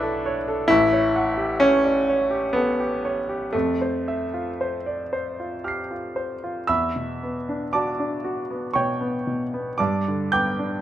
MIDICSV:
0, 0, Header, 1, 2, 480
1, 0, Start_track
1, 0, Tempo, 903614
1, 355, Time_signature, 3, 2, 24, 8
1, 837, Tempo, 949367
1, 1317, Tempo, 1011804
1, 1797, Tempo, 1054482
1, 2757, Tempo, 1036269
1, 5151, End_track
2, 0, Start_track
2, 0, Title_t, "Grand piano"
2, 0, Program_c, 0, 0
2, 0, Control_c, 0, 64, 127
2, 0, Note_on_c, 0, 35, 68
2, 0, Note_on_c, 0, 62, 111
2, 0, Note_on_c, 0, 64, 103
2, 0, Note_on_c, 0, 66, 111
2, 0, Note_on_c, 0, 69, 51
2, 0, Note_on_c, 0, 71, 54
2, 0, Note_on_c, 0, 73, 62
2, 0, Note_on_c, 0, 74, 47
2, 0, Note_on_c, 0, 78, 60
2, 14, Note_off_c, 0, 69, 0
2, 14, Note_on_c, 0, 69, 50
2, 138, Note_off_c, 0, 73, 0
2, 138, Note_on_c, 0, 73, 56
2, 196, Note_off_c, 0, 69, 0
2, 256, Note_on_c, 0, 69, 56
2, 318, Note_off_c, 0, 73, 0
2, 336, Note_off_c, 0, 35, 0
2, 356, Note_off_c, 0, 62, 0
2, 360, Note_off_c, 0, 64, 0
2, 360, Note_on_c, 0, 64, 118
2, 363, Note_off_c, 0, 78, 0
2, 363, Control_c, 0, 64, 0
2, 364, Note_off_c, 0, 71, 0
2, 365, Note_off_c, 0, 66, 0
2, 365, Note_off_c, 0, 69, 0
2, 366, Note_off_c, 0, 74, 0
2, 371, Note_on_c, 0, 33, 73
2, 451, Control_c, 0, 64, 127
2, 493, Note_on_c, 0, 73, 53
2, 615, Note_on_c, 0, 78, 50
2, 676, Note_off_c, 0, 73, 0
2, 730, Note_on_c, 0, 67, 52
2, 798, Note_off_c, 0, 78, 0
2, 839, Note_off_c, 0, 64, 0
2, 848, Note_on_c, 0, 61, 103
2, 855, Note_on_c, 0, 73, 51
2, 914, Note_off_c, 0, 67, 0
2, 970, Note_on_c, 0, 74, 43
2, 1035, Note_off_c, 0, 73, 0
2, 1081, Note_off_c, 0, 74, 0
2, 1097, Note_on_c, 0, 73, 50
2, 1207, Note_on_c, 0, 67, 49
2, 1279, Note_off_c, 0, 73, 0
2, 1319, Note_on_c, 0, 59, 86
2, 1322, Note_off_c, 0, 61, 0
2, 1327, Note_on_c, 0, 69, 42
2, 1391, Note_off_c, 0, 67, 0
2, 1438, Note_off_c, 0, 69, 0
2, 1447, Note_on_c, 0, 67, 44
2, 1566, Note_on_c, 0, 73, 46
2, 1630, Note_off_c, 0, 67, 0
2, 1681, Note_on_c, 0, 67, 41
2, 1754, Note_off_c, 0, 73, 0
2, 1784, Note_off_c, 0, 33, 0
2, 1792, Note_on_c, 0, 57, 80
2, 1797, Note_off_c, 0, 59, 0
2, 1800, Note_off_c, 0, 67, 0
2, 1801, Note_on_c, 0, 41, 57
2, 1805, Control_c, 0, 64, 0
2, 1880, Control_c, 0, 64, 127
2, 1924, Note_on_c, 0, 72, 43
2, 2044, Note_on_c, 0, 76, 49
2, 2116, Note_off_c, 0, 72, 0
2, 2162, Note_on_c, 0, 65, 48
2, 2236, Note_off_c, 0, 76, 0
2, 2284, Note_on_c, 0, 72, 44
2, 2354, Note_off_c, 0, 65, 0
2, 2400, Note_on_c, 0, 74, 37
2, 2474, Note_off_c, 0, 72, 0
2, 2520, Note_off_c, 0, 74, 0
2, 2521, Note_on_c, 0, 72, 49
2, 2644, Note_on_c, 0, 65, 38
2, 2710, Note_off_c, 0, 72, 0
2, 2754, Note_off_c, 0, 57, 0
2, 2756, Note_on_c, 0, 89, 36
2, 2757, Note_on_c, 0, 67, 37
2, 2773, Note_on_c, 0, 96, 32
2, 2832, Note_off_c, 0, 65, 0
2, 2877, Note_off_c, 0, 67, 0
2, 2878, Note_on_c, 0, 65, 38
2, 2995, Note_on_c, 0, 72, 40
2, 3071, Note_off_c, 0, 65, 0
2, 3124, Note_on_c, 0, 65, 45
2, 3190, Note_off_c, 0, 72, 0
2, 3220, Note_off_c, 0, 89, 0
2, 3223, Note_off_c, 0, 41, 0
2, 3229, Note_off_c, 0, 96, 0
2, 3233, Note_on_c, 0, 88, 75
2, 3238, Note_on_c, 0, 83, 55
2, 3241, Note_on_c, 0, 40, 49
2, 3241, Note_on_c, 0, 76, 56
2, 3242, Note_off_c, 0, 65, 0
2, 3247, Control_c, 0, 64, 0
2, 3324, Control_c, 0, 64, 127
2, 3365, Note_on_c, 0, 47, 36
2, 3491, Note_on_c, 0, 59, 38
2, 3553, Note_off_c, 0, 47, 0
2, 3610, Note_on_c, 0, 62, 44
2, 3676, Note_off_c, 0, 59, 0
2, 3698, Note_off_c, 0, 83, 0
2, 3700, Note_off_c, 0, 76, 0
2, 3715, Note_off_c, 0, 88, 0
2, 3721, Note_on_c, 0, 86, 67
2, 3724, Note_on_c, 0, 81, 52
2, 3728, Note_on_c, 0, 74, 47
2, 3730, Note_on_c, 0, 66, 42
2, 3796, Note_off_c, 0, 62, 0
2, 3845, Note_on_c, 0, 62, 40
2, 3916, Note_off_c, 0, 66, 0
2, 3961, Note_on_c, 0, 66, 44
2, 4033, Note_off_c, 0, 62, 0
2, 4081, Note_on_c, 0, 59, 39
2, 4148, Note_off_c, 0, 66, 0
2, 4178, Note_off_c, 0, 81, 0
2, 4180, Note_off_c, 0, 74, 0
2, 4188, Note_on_c, 0, 85, 66
2, 4195, Note_off_c, 0, 86, 0
2, 4196, Note_on_c, 0, 79, 57
2, 4197, Note_on_c, 0, 73, 55
2, 4198, Note_on_c, 0, 47, 38
2, 4265, Note_off_c, 0, 59, 0
2, 4315, Note_on_c, 0, 59, 40
2, 4382, Note_off_c, 0, 47, 0
2, 4436, Note_on_c, 0, 47, 37
2, 4500, Note_off_c, 0, 59, 0
2, 4560, Note_on_c, 0, 59, 39
2, 4625, Note_off_c, 0, 47, 0
2, 4654, Note_off_c, 0, 40, 0
2, 4654, Note_off_c, 0, 79, 0
2, 4655, Note_off_c, 0, 73, 0
2, 4669, Note_off_c, 0, 85, 0
2, 4670, Note_on_c, 0, 86, 66
2, 4676, Note_on_c, 0, 74, 51
2, 4677, Note_on_c, 0, 81, 50
2, 4679, Note_off_c, 0, 59, 0
2, 4681, Control_c, 0, 64, 0
2, 4682, Note_on_c, 0, 43, 52
2, 4769, Control_c, 0, 64, 127
2, 4812, Note_on_c, 0, 50, 35
2, 4907, Note_off_c, 0, 74, 0
2, 4908, Note_off_c, 0, 81, 0
2, 4919, Note_off_c, 0, 86, 0
2, 4922, Note_on_c, 0, 91, 81
2, 4926, Note_on_c, 0, 59, 42
2, 4926, Note_on_c, 0, 79, 61
2, 4926, Note_on_c, 0, 86, 51
2, 5001, Note_off_c, 0, 50, 0
2, 5047, Note_on_c, 0, 62, 41
2, 5114, Note_off_c, 0, 59, 0
2, 5151, Note_off_c, 0, 43, 0
2, 5151, Note_off_c, 0, 62, 0
2, 5151, Note_off_c, 0, 79, 0
2, 5151, Note_off_c, 0, 86, 0
2, 5151, Note_off_c, 0, 91, 0
2, 5151, End_track
0, 0, End_of_file